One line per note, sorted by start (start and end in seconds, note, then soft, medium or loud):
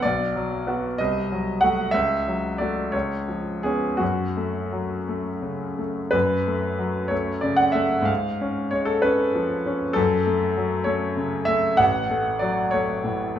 0.02 0.97 B1 soft
0.02 0.98 D5 medium
0.36 0.86 F#3 soft
0.67 0.96 B3 soft
0.67 0.96 F#4 soft
0.98 1.91 C2 soft
0.98 1.61 D#5 medium
1.32 1.81 F#3 soft
1.61 1.91 A3 soft
1.61 1.91 F#4 soft
1.61 1.93 F#5 medium
1.91 2.91 C#2 soft
1.91 2.59 E5 medium
2.27 2.80 F#3 soft
2.58 2.91 A3 soft
2.58 2.91 F#4 soft
2.58 2.93 D5 soft
2.92 3.97 C#2 soft
2.92 3.63 C#5 medium
3.28 3.86 F3 soft
3.63 3.97 B3 soft
3.63 3.97 C#4 soft
3.63 4.00 G#4 soft
3.97 6.09 F#2 soft
3.97 5.78 F#4 medium
4.37 4.95 A3 soft
4.72 5.29 F#3 soft
5.08 5.65 A3 soft
5.42 6.00 C#3 soft
5.78 6.13 A3 soft
6.11 8.04 F#2 soft
6.11 7.09 B4 medium
6.47 6.98 A3 soft
6.79 7.30 F#3 soft
7.08 7.63 A3 soft
7.08 7.42 C#5 soft
7.41 7.96 C#3 soft
7.41 7.59 D5 medium
7.56 7.75 F#5 medium
7.72 8.08 A3 soft
7.72 8.07 E5 medium
8.02 9.89 G#2 soft
8.02 8.71 F5 medium
8.41 8.92 C#4 soft
8.71 9.23 G#3 soft
8.71 8.88 C#5 medium
8.85 9.03 A4 medium
9.02 9.54 C#4 soft
9.02 9.95 B4 medium
9.34 9.84 F3 soft
9.66 9.97 C#4 soft
9.93 11.76 F#2 soft
9.93 10.87 A4 medium
10.26 10.76 A3 soft
10.57 11.06 F#3 soft
10.84 11.35 A3 soft
10.84 11.47 C#5 medium
11.17 11.67 C#3 soft
11.45 11.80 A3 soft
11.45 11.78 E5 medium
11.77 13.39 A1 soft
11.77 12.41 F#5 medium
12.10 12.60 A3 soft
12.39 12.91 F#3 soft
12.39 12.72 D5 medium
12.71 13.24 A3 soft
12.71 13.39 C#5 medium
13.04 13.39 A2 soft
13.36 13.39 A3 soft